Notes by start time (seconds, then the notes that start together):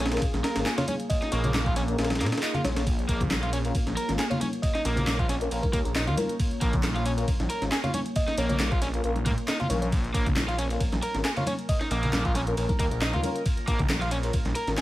Already playing: A#1 A#3 F4 G#4
0.06 snare, ride
0.12 C#4 F4 A#4, snare, closed hi-hat, ride
0.17 snare, ride
0.22 A#1, kick, closed hi-hat, ride
0.34 A#1, snare, closed hi-hat, high conga
0.44 A#4, snare, closed hi-hat, ride
0.56 G#1 C#4 F4 A#4, snare, closed hi-hat, ride
0.66 G#4, snare, clap, closed hi-hat, ride
0.78 F4 C#5, snare, closed hi-hat, ride, low conga
0.88 C#4 C#5, closed hi-hat, ride, high conga
1.00 closed hi-hat
1.09 D#5, kick, closed hi-hat, ride
1.22 D#4, snare, closed hi-hat
1.32 A#1 A#3 C#5, snare, closed hi-hat, ride
1.44 C#5, closed hi-hat, ride, low conga
1.54 snare, clap, closed hi-hat, ride, high conga
1.66 F4, kick, closed hi-hat
1.76 C#4, snare, closed hi-hat, ride
1.88 C#4 F4 A#4, closed hi-hat
1.98 A#1 C#4 F4 A#4, snare, closed hi-hat, ride
2.04 snare, ride
2.10 snare, closed hi-hat, ride, high conga
2.15 snare, ride
2.20 A#2 A#3, snare, closed hi-hat, ride
2.26 snare, ride
2.32 snare, closed hi-hat, ride
2.38 snare, ride
2.42 D#4, clap, closed hi-hat, ride
2.54 F4, closed hi-hat, ride, low conga
2.64 A#1 C#4 F4 C#5, snare, closed hi-hat, ride, high conga
2.76 C#5, snare, closed hi-hat, ride
2.87 C#5, kick, closed hi-hat, ride
2.99 closed hi-hat
3.09 A#1 A#3, kick, closed hi-hat, ride
3.21 kick, closed hi-hat, low conga
3.30 snare, clap, closed hi-hat, ride, high conga
3.43 F4, closed hi-hat, ride
3.53 C#4, closed hi-hat, ride
3.64 C#4 F4 A#4, closed hi-hat, ride
3.75 A#1, kick, closed hi-hat, ride
3.87 A#1, snare, closed hi-hat, high conga
3.97 A#4, closed hi-hat, ride
4.08 G#1 C#4 F4 A#4, snare, closed hi-hat
4.19 G#4, snare, clap, closed hi-hat, ride
4.30 F4 C#5, closed hi-hat, ride, low conga
4.41 C#4 C#5, closed hi-hat, ride, high conga
4.53 closed hi-hat
4.62 D#5, kick, closed hi-hat, ride
4.75 D#4, snare, closed hi-hat
4.85 A#1 A#3, snare, closed hi-hat, ride
4.96 closed hi-hat, ride, low conga
5.07 snare, clap, closed hi-hat, ride, high conga
5.19 F4, kick, closed hi-hat
5.29 C#4, snare, closed hi-hat, ride
5.41 C#4 F4 A#4, closed hi-hat
5.51 A#1 C#4 F4 A#4, closed hi-hat, ride
5.62 A#4, kick, closed hi-hat, high conga
5.73 D#2 A#3 A#4, kick, closed hi-hat, ride
5.85 A#1 A#4, closed hi-hat
5.95 D#4, snare, clap, closed hi-hat, ride
6.07 D#2 F4, closed hi-hat, low conga
6.17 C#4 F4 A#4, closed hi-hat, ride, high conga
6.29 closed hi-hat
6.40 kick, closed hi-hat, ride
6.51 closed hi-hat
6.61 A#1 A#3, kick, closed hi-hat, ride
6.73 kick, closed hi-hat, low conga
6.83 snare, clap, closed hi-hat, ride, high conga
6.95 F4, closed hi-hat, ride
7.06 C#4, closed hi-hat, ride
7.17 C#4 F4 A#4, closed hi-hat, ride
7.28 A#1, kick, closed hi-hat, ride
7.40 A#1, snare, closed hi-hat, high conga
7.50 A#4, closed hi-hat, ride
7.61 G#1 C#4 F4 A#4, snare, closed hi-hat
7.72 G#4, snare, clap, closed hi-hat, ride
7.84 F4 C#5, closed hi-hat, ride, low conga
7.94 C#4 C#5, closed hi-hat, ride, high conga
8.06 closed hi-hat
8.16 D#5, kick, closed hi-hat, ride
8.28 D#4, snare, closed hi-hat
8.38 A#1 A#3 C#5, snare, closed hi-hat, ride
8.49 C#5, closed hi-hat, ride, low conga
8.60 snare, clap, closed hi-hat, ride, high conga
8.72 F4, kick, closed hi-hat
8.82 C#4, snare, closed hi-hat, ride
8.94 C#4 F4 A#4, closed hi-hat
9.04 A#1 C#4 F4 A#4, closed hi-hat
9.15 closed hi-hat, high conga
9.26 A#2 A#3, kick, closed hi-hat, ride
9.38 closed hi-hat
9.48 D#4, snare, clap, closed hi-hat, ride
9.60 F4, closed hi-hat, low conga
9.69 A#1 C#4 F4 A#4 C#5, closed hi-hat, ride, high conga
9.82 C#5, closed hi-hat
9.92 A#4, kick, closed hi-hat, ride
10.04 closed hi-hat
10.14 A#1 A#3, kick, closed hi-hat, ride
10.26 kick, closed hi-hat, low conga
10.36 snare, clap, closed hi-hat, ride, high conga
10.48 F4, closed hi-hat, ride
10.58 C#4, closed hi-hat, ride
10.70 C#4 F4 A#4, closed hi-hat, ride
10.80 A#1, kick, closed hi-hat, ride
10.92 A#1, snare, closed hi-hat, high conga
11.02 A#4, closed hi-hat, ride
11.14 G#1 C#4 F4 A#4, snare, closed hi-hat
11.25 G#4, snare, clap, closed hi-hat, ride
11.36 F4 C#5, closed hi-hat, ride, low conga
11.46 C#4 C#5, closed hi-hat, ride, high conga
11.59 closed hi-hat
11.69 D#5, kick, closed hi-hat, ride
11.81 D#4, snare, closed hi-hat
11.91 A#1 A#3, snare, closed hi-hat, ride
12.03 closed hi-hat, ride, low conga
12.13 snare, clap, closed hi-hat, ride, high conga
12.25 F4, kick, closed hi-hat
12.35 C#4, snare, closed hi-hat, ride
12.47 C#4 F4 A#4, closed hi-hat
12.57 A#1 C#4 F4 A#4, closed hi-hat, ride
12.69 A#4, kick, closed hi-hat, high conga
12.79 D#2 A#3 A#4, kick, closed hi-hat, ride
12.91 A#1 A#4, closed hi-hat
13.01 D#4, snare, clap, closed hi-hat, ride
13.13 D#2 F4, closed hi-hat, low conga
13.23 C#4 F4 A#4, closed hi-hat, ride, high conga
13.36 closed hi-hat
13.46 kick, closed hi-hat, ride
13.57 closed hi-hat
13.68 A#1 A#3, kick, closed hi-hat, ride
13.79 kick, closed hi-hat, low conga
13.89 snare, clap, closed hi-hat, ride, high conga
14.01 F4, closed hi-hat, ride
14.11 C#4, closed hi-hat, ride
14.23 C#4 F4 A#4, closed hi-hat, ride
14.33 A#1, kick, closed hi-hat, ride
14.45 A#1, snare, closed hi-hat, high conga
14.55 A#4, closed hi-hat, ride
14.67 G#1 C#4 F4 A#4, snare, closed hi-hat
14.77 G#4, snare, clap, closed hi-hat, ride